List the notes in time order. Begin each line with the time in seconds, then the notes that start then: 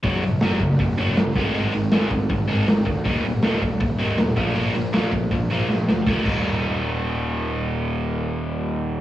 0.03 F#1 F#2 C#3 F#3, kick, open hi-hat
0.22 A#1 F#2 C#3, open hi-hat
0.41 F#1 F#2 C#3 F#3, snare, open hi-hat
0.60 F#1 F#2 C#3, kick, open hi-hat
0.79 F#1 F#2 C#3, kick, open hi-hat
0.98 F#1 F#2 C#3 F#3, open hi-hat
1.17 G1 F#2 C#3, snare, open hi-hat
1.36 G#1 G#2 D#3 G#3, kick, open hi-hat
1.54 G#1 G#2 D#3 G#3, open hi-hat
1.73 G#1 G#2 D#3, open hi-hat
1.91 G#1 G#2 D#3 G#3, snare, open hi-hat
2.10 G#1 G#2 D#3, kick, open hi-hat
2.30 G#1 G#2 D#3, kick, open hi-hat
2.48 G#1 G#2 D#3 G#3, open hi-hat
2.67 G#1 G#2 D#3, snare, open hi-hat
2.85 D2 G#2 D#3, kick, open hi-hat
3.05 D#1 D#2 A#2 D#3, kick, open hi-hat
3.24 G1 D#2 A#2, open hi-hat
3.42 D#1 D#2 A#2 D#3, snare, open hi-hat
3.62 D#1 D#2 A#2, kick, open hi-hat
3.80 D#1 D#2 A#2, kick, open hi-hat
3.98 D#1 D#2 A#2 D#3, open hi-hat
4.18 D#1 D#2 A#2, snare, open hi-hat
4.36 A#1 A#2 F3 A#3, kick, open hi-hat
4.55 A#1 A#2 F3 A#3, open hi-hat
4.74 A#1 A#2 F3, open hi-hat
4.93 A#1 A#2 F3 A#3, snare, open hi-hat
5.12 A#1 A#2 F3, kick, open hi-hat
5.31 A#1 A#2 F3, kick, open hi-hat
5.50 A#1 A#2 F3 A#3, open hi-hat
5.69 A#1 A#2 F3, snare
5.88 D2 A#2 F3, snare
6.06 D#1 D#2 A#2, kick, snare
6.11 D#3
6.25 D#1 D#2 A#2 D#3, kick, crash